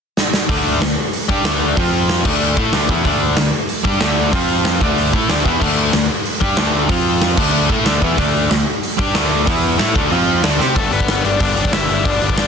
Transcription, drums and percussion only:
0.17 snare
0.34 snare
0.49 kick, open hi-hat
0.82 snare, open hi-hat
1.13 open hi-hat
1.29 kick
1.45 snare, open hi-hat
1.77 kick, open hi-hat
2.09 snare, open hi-hat
2.25 kick, crash
2.57 kick
2.73 snare, open hi-hat
2.89 kick
3.05 kick, open hi-hat
3.37 snare, open hi-hat
3.69 open hi-hat
3.85 kick
4.01 snare, open hi-hat
4.33 kick, open hi-hat
4.65 snare, open hi-hat
4.81 kick
4.98 open hi-hat
5.13 kick
5.30 snare, open hi-hat
5.45 kick
5.62 kick, crash
5.93 snare, open hi-hat
6.25 open hi-hat
6.41 kick
6.57 snare, open hi-hat
6.89 kick, open hi-hat
7.22 snare, open hi-hat
7.37 kick, crash
7.70 kick
7.86 snare, open hi-hat
8.02 kick
8.18 kick, open hi-hat
8.51 snare, open hi-hat
8.83 open hi-hat
8.99 kick
9.15 snare, open hi-hat
9.47 kick, open hi-hat
9.79 snare, open hi-hat
9.96 kick
10.12 open hi-hat
10.44 snare, open hi-hat
10.60 snare
10.76 kick, open hi-hat
10.93 open hi-hat
11.00 kick
11.08 snare, open hi-hat
11.25 open hi-hat
11.40 kick, open hi-hat
11.57 open hi-hat
11.65 kick
11.73 snare, open hi-hat
11.89 open hi-hat
12.05 kick, open hi-hat
12.22 open hi-hat
12.30 kick
12.38 snare, open hi-hat

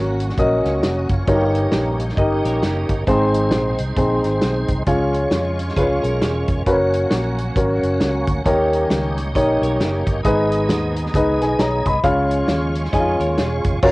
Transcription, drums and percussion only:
0.20 closed hi-hat
0.29 snare
0.38 kick, closed hi-hat
0.65 snare, closed hi-hat
0.83 snare, closed hi-hat
1.09 kick, closed hi-hat
1.28 kick, closed hi-hat
1.55 closed hi-hat
1.72 snare, closed hi-hat
2.00 closed hi-hat
2.09 snare
2.17 kick, closed hi-hat
2.45 snare, closed hi-hat
2.63 snare, closed hi-hat
2.89 kick, closed hi-hat
3.07 kick, closed hi-hat
3.34 closed hi-hat
3.51 snare, closed hi-hat
3.78 closed hi-hat
3.96 kick, closed hi-hat
4.24 snare, closed hi-hat
4.41 snare, closed hi-hat
4.68 kick, closed hi-hat
4.86 kick, closed hi-hat
5.14 closed hi-hat
5.31 snare, closed hi-hat
5.59 closed hi-hat
5.69 snare
5.77 kick, closed hi-hat
6.04 closed hi-hat
6.22 snare, closed hi-hat
6.48 kick, closed hi-hat
6.66 kick, closed hi-hat
6.94 closed hi-hat
7.11 snare, closed hi-hat
7.38 closed hi-hat
7.56 kick, closed hi-hat
7.83 closed hi-hat
8.01 snare, closed hi-hat
8.27 kick, closed hi-hat
8.46 kick, closed hi-hat
8.73 closed hi-hat
8.90 snare, closed hi-hat
9.17 closed hi-hat
9.35 kick, closed hi-hat
9.63 closed hi-hat
9.80 snare, closed hi-hat
10.07 kick, closed hi-hat
10.25 kick, closed hi-hat
10.52 closed hi-hat
10.69 snare, closed hi-hat
10.96 closed hi-hat
11.06 snare
11.14 kick, closed hi-hat
11.41 snare, closed hi-hat
11.59 snare, closed hi-hat
11.86 kick, closed hi-hat
12.04 kick, closed hi-hat
12.31 closed hi-hat
12.48 snare, closed hi-hat
12.75 closed hi-hat
12.85 snare
12.93 kick, closed hi-hat
13.20 closed hi-hat
13.38 snare, closed hi-hat
13.64 kick, closed hi-hat
13.82 kick, crash

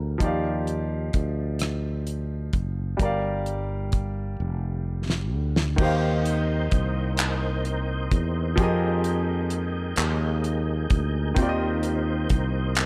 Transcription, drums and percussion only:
0.20 kick, closed hi-hat
0.67 closed hi-hat
1.13 kick, closed hi-hat
1.59 cross-stick, closed hi-hat
2.07 closed hi-hat
2.53 kick, closed hi-hat
2.99 kick, closed hi-hat
3.46 closed hi-hat
3.92 kick, closed hi-hat
5.10 snare
5.56 snare
5.78 kick, crash
6.25 closed hi-hat
6.71 kick, closed hi-hat
7.17 clap, closed hi-hat
7.65 closed hi-hat
8.11 kick, closed hi-hat
8.58 kick, closed hi-hat
9.04 closed hi-hat
9.50 closed hi-hat
9.96 clap, closed hi-hat
10.44 closed hi-hat
10.90 kick, closed hi-hat
11.36 kick, closed hi-hat
11.83 closed hi-hat
12.30 kick, closed hi-hat
12.75 clap, closed hi-hat

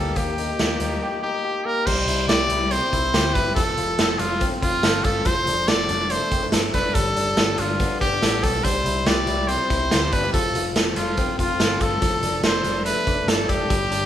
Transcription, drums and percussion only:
0.16 kick, closed hi-hat
0.38 closed hi-hat
0.59 snare, closed hi-hat
0.80 closed hi-hat
1.87 kick, crash
2.08 closed hi-hat
2.29 snare, closed hi-hat
2.50 closed hi-hat
2.71 closed hi-hat
2.93 kick, closed hi-hat
3.14 snare, closed hi-hat
3.35 kick, closed hi-hat
3.56 kick, closed hi-hat
3.78 closed hi-hat
3.99 snare, closed hi-hat
4.19 closed hi-hat
4.41 kick, closed hi-hat
4.62 kick, closed hi-hat
4.83 snare, closed hi-hat
5.04 kick, closed hi-hat
5.25 kick, closed hi-hat
5.47 closed hi-hat
5.68 snare, closed hi-hat
5.89 closed hi-hat
6.10 closed hi-hat
6.32 kick, closed hi-hat
6.52 snare, closed hi-hat
6.74 kick, closed hi-hat
6.95 kick, closed hi-hat
7.16 closed hi-hat
7.37 snare, closed hi-hat
7.58 closed hi-hat
7.80 kick, closed hi-hat
8.01 kick, closed hi-hat
8.22 snare, closed hi-hat
8.43 kick, closed hi-hat
8.65 kick, closed hi-hat
8.86 closed hi-hat
9.06 snare, closed hi-hat
9.27 closed hi-hat
9.49 closed hi-hat
9.70 kick, closed hi-hat
9.91 snare, closed hi-hat
10.12 kick, closed hi-hat
10.34 kick, closed hi-hat
10.55 closed hi-hat
10.76 snare, closed hi-hat
10.96 closed hi-hat
11.17 kick, closed hi-hat
11.39 kick, closed hi-hat
11.60 snare, closed hi-hat
11.81 kick, closed hi-hat
12.02 kick, closed hi-hat
12.23 closed hi-hat
12.43 snare, closed hi-hat
12.64 closed hi-hat
12.86 closed hi-hat
13.07 kick, closed hi-hat
13.28 snare, closed hi-hat
13.49 kick, closed hi-hat
13.70 kick, closed hi-hat
13.92 closed hi-hat

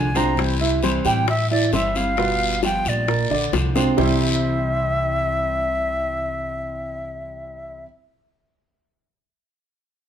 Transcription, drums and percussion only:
0.15 high bongo, short guiro
0.37 high bongo, long guiro
0.83 high bongo, short guiro
1.05 high bongo, short guiro
1.28 high bongo, long guiro
1.51 high bongo
1.73 high bongo, low bongo, short guiro
1.95 high bongo, short guiro
2.17 high bongo, long guiro
2.63 high bongo, short guiro
2.85 high bongo, short guiro
3.08 high bongo, long guiro
3.30 high bongo
3.53 high bongo, short guiro
3.76 low bongo, short guiro
3.98 low bongo, long guiro

